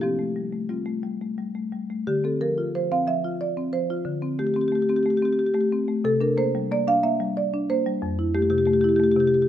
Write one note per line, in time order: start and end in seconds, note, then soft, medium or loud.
0.01 2.04 F3 medium
0.01 0.67 C4 soft
0.01 0.68 G4 medium
0.19 0.46 A3 soft
0.36 0.53 G3 soft
0.52 0.80 A3 soft
0.69 0.97 G3 soft
0.69 1.35 C4 soft
0.69 1.36 F4 soft
0.86 1.14 A3 soft
1.03 1.32 G3 soft
1.21 1.49 A3 soft
1.38 1.66 G3 soft
1.55 1.83 A3 soft
1.73 2.01 G3 soft
1.90 2.08 A3 soft
2.07 4.03 D3 medium
2.07 2.25 G4 medium
2.24 2.51 C4 soft
2.24 2.42 A4 medium
2.41 2.68 F3 soft
2.41 2.73 A#4 medium
2.58 2.85 F4 soft
2.75 3.02 F3 soft
2.75 2.92 C5 medium
2.92 3.18 C4 medium
2.92 3.08 F5 medium
3.07 3.34 F3 soft
3.07 3.40 E5 medium
3.24 3.77 F4 soft
3.41 3.73 D5 medium
3.57 3.84 C4 medium
3.73 4.00 F3 soft
3.73 4.37 C5 medium
3.90 4.07 F4 medium
4.05 6.00 D3 medium
4.22 4.49 C4 medium
4.39 4.66 A3 soft
4.39 4.47 G4 medium
4.47 4.54 G4 medium
4.54 4.83 C4 soft
4.54 4.61 G4 medium
4.61 4.68 G4 medium
4.68 4.99 A3 soft
4.68 4.75 G4 medium
4.75 4.82 G4 medium
4.82 4.89 G4 medium
4.89 5.16 C4 medium
4.89 4.96 G4 soft
4.96 5.03 G4 medium
5.03 5.32 A3 soft
5.03 5.10 G4 medium
5.10 5.17 G4 medium
5.17 5.25 G4 medium
5.22 5.71 C4 medium
5.22 5.33 G4 medium
5.33 5.39 G4 medium
5.39 5.47 G4 medium
5.47 5.54 G4 soft
5.54 5.82 A3 medium
5.54 5.61 G4 medium
5.61 5.68 G4 soft
5.72 5.99 C4 soft
5.88 6.05 A3 medium
6.04 7.99 C3 medium
6.04 6.22 A4 medium
6.21 6.48 D4 medium
6.21 6.38 A#4 medium
6.37 6.64 A#3 medium
6.37 6.70 C5 medium
6.55 6.82 G3 medium
6.71 6.98 A#3 medium
6.71 6.88 D5 medium
6.87 7.14 D4 medium
6.87 7.05 F5 medium
7.03 7.31 A#3 medium
7.03 7.36 E5 medium
7.20 7.74 G3 medium
7.37 7.69 D5 medium
7.54 7.80 D4 medium
7.70 7.97 A#3 medium
7.70 8.33 C5 medium
7.86 8.03 G3 medium
8.02 9.48 F2 medium
8.19 8.45 E4 medium
8.35 8.61 A3 medium
8.35 8.42 G4 medium
8.42 8.50 G4 medium
8.50 8.78 C3 medium
8.50 8.58 G4 medium
8.58 8.66 G4 medium
8.66 8.94 A3 medium
8.66 8.73 G4 medium
8.73 8.81 G4 medium
8.81 9.11 E4 medium
8.81 8.89 G4 medium
8.89 8.96 G4 medium
8.96 9.27 A3 medium
8.96 9.04 G4 medium
9.04 9.12 G4 medium
9.12 9.20 G4 medium
9.17 9.48 C3 medium
9.17 9.27 G4 medium
9.27 9.34 G4 medium
9.34 9.42 G4 medium
9.42 9.48 G4 medium